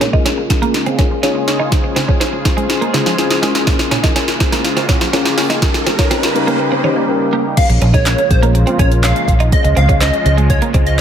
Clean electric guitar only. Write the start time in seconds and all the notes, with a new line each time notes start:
0.01 C#4
0.13 D#4
0.25 C#4
0.38 muted clean electric guitar stroke
0.62 A#3
0.74 muted clean electric guitar stroke
0.86 C4
0.99 C#4
1.23 C#4
1.35 muted clean electric guitar stroke
1.60 D#4
1.84 muted clean electric guitar stroke
1.96 C4
2.08 C#4
2.20 C4
2.33 muted clean electric guitar stroke
2.57 G#3
2.69 muted clean electric guitar stroke
2.81 A#3
2.94 C4
3.42 G#3
3.79 muted clean electric guitar stroke
3.91 C#4
4.03 D#4
4.16 C#4
4.28 muted clean electric guitar stroke
4.52 A#3
4.65 muted clean electric guitar stroke
4.77 C4
4.89 C#4
5.13 C#4
5.25 muted clean electric guitar stroke
5.50 D#4
5.74 muted clean electric guitar stroke
5.87 C4
5.99 C#4
6.11 C4
6.23 muted clean electric guitar stroke
6.47 A#3
6.59 muted clean electric guitar stroke
6.72 C4
6.84 C#4
7.33 A#3
7.70 muted clean electric guitar stroke
7.82 C#4
7.94 D#4
8.06 C#4
8.19 muted clean electric guitar stroke
8.43 A#3
8.55 muted clean electric guitar stroke
8.67 C4
8.79 C#4
9.04 C#4
9.16 muted clean electric guitar stroke
9.40 D#4
9.64 muted clean electric guitar stroke
9.77 C4
9.89 C#4
10.01 C4
10.13 muted clean electric guitar stroke
10.37 G#3
10.50 muted clean electric guitar stroke
10.62 A#3
10.74 C4